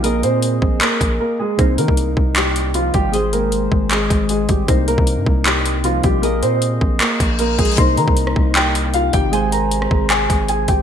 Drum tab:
HH |x-----x-----x-----------x-----x-----------------|x-----x-----x-----------x-----x-----x-----x-----|x-----x-----x-----------x-----x-----x-----x-----|x-----x-----x-----------x-----x-----x-----x-----|
CP |------------------------x-----------------------|------------------------x-----------------------|------------------------x-----------------------|------------------------x-----------------------|
SD |------------------------------------------------|------------------------------------------------|------------------------------------------------|------------------------------------------------|
BD |------------------o-----------o-----------------|o--------o--------o-----------------------o-----|------------------o-----------o-----------o-----|o--------o--------o-----------------------o-----|

HH |x-----x-----x-----------x-----x-----x-----x-x-x-|x-----x-----x-----------x-----x-----x-----x-----|x-----x-----x-----------x-----x-----x-----x-----|
CP |------------------------x-----------------------|------------------------x-----------------------|------------------------x-----------------------|
SD |------------------------------------------------|---------------r--------------------------------|---------------r--------------------------------|
BD |------------------o-----------o-----------o-----|o--------o--------o-----------------------o-----|------------------o-----------o-----------o-----|